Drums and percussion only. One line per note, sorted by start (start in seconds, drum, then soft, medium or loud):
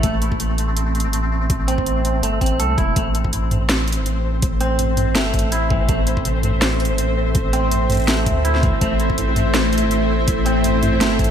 0.03 kick loud
0.03 closed hi-hat medium
0.22 closed hi-hat medium
0.32 kick medium
0.40 closed hi-hat medium
0.58 closed hi-hat medium
0.77 closed hi-hat medium
0.95 closed hi-hat soft
1.00 closed hi-hat medium
1.13 closed hi-hat medium
1.50 kick loud
1.50 closed hi-hat medium
1.68 closed hi-hat medium
1.78 kick medium
1.86 closed hi-hat medium
2.05 closed hi-hat medium
2.23 closed hi-hat medium
2.41 kick medium
2.41 closed hi-hat soft
2.46 closed hi-hat medium
2.60 closed hi-hat medium
2.78 kick medium
2.78 closed hi-hat soft
2.96 kick loud
2.96 closed hi-hat medium
3.15 closed hi-hat medium
3.25 kick medium
3.33 closed hi-hat medium
3.33 mid tom soft
3.51 closed hi-hat medium
3.51 mid tom medium
3.69 snare loud
3.69 closed hi-hat medium
3.88 closed hi-hat soft
3.92 closed hi-hat medium
4.06 closed hi-hat medium
4.42 kick loud
4.42 closed hi-hat medium
4.61 closed hi-hat medium
4.79 closed hi-hat medium
4.79 mid tom soft
4.97 closed hi-hat medium
4.97 mid tom medium
5.15 snare loud
5.15 closed hi-hat medium
5.34 kick medium
5.34 closed hi-hat soft
5.34 mid tom medium
5.39 closed hi-hat medium
5.52 closed hi-hat medium
5.70 kick loud
5.70 mid tom medium
5.89 kick loud
5.89 closed hi-hat medium
6.07 closed hi-hat medium
6.17 kick medium
6.25 closed hi-hat medium
6.25 mid tom soft
6.43 closed hi-hat medium
6.43 mid tom medium
6.62 snare loud
6.62 closed hi-hat medium
6.80 closed hi-hat soft
6.85 closed hi-hat medium
6.98 closed hi-hat medium
7.35 kick loud
7.35 closed hi-hat medium
7.53 closed hi-hat medium
7.71 closed hi-hat medium
7.71 mid tom soft
7.90 closed hi-hat medium
7.90 mid tom medium
7.92 closed hi-hat soft
7.95 closed hi-hat soft
7.97 closed hi-hat soft
8.00 closed hi-hat soft
8.02 closed hi-hat soft
8.04 closed hi-hat soft
8.06 snare loud
8.06 closed hi-hat soft
8.08 closed hi-hat medium
8.26 kick medium
8.26 closed hi-hat medium
8.26 mid tom soft
8.45 closed hi-hat medium
8.55 snare soft
8.63 kick loud
8.63 closed hi-hat soft
8.63 mid tom soft
8.81 kick loud
8.81 closed hi-hat medium
9.00 closed hi-hat medium
9.10 kick medium
9.18 closed hi-hat medium
9.18 mid tom soft
9.36 closed hi-hat medium
9.36 mid tom medium
9.54 snare loud
9.54 closed hi-hat medium
9.73 closed hi-hat soft
9.78 closed hi-hat medium
9.91 closed hi-hat medium
10.28 kick loud
10.28 closed hi-hat medium
10.46 closed hi-hat medium
10.64 closed hi-hat medium
10.64 mid tom soft
10.83 closed hi-hat medium
10.83 mid tom medium
11.01 snare loud
11.01 closed hi-hat medium
11.19 kick medium
11.19 closed hi-hat soft
11.19 mid tom soft
11.24 closed hi-hat medium